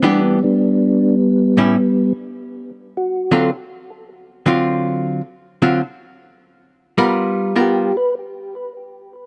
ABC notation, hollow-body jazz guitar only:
X:1
M:4/4
L:1/8
Q:"Swing" 1/4=104
K:G
V:1 name="Hollow-body jazz guitar"
[E,B,DG] z4 [A,,G,^CE] z2 | z3 [D,F,C^E] z3 [D,F,CE]- | [D,F,C^E]2 z [D,F,CE] z4 | [G,B,=F^A]2 [G,B,FA] z4 z |]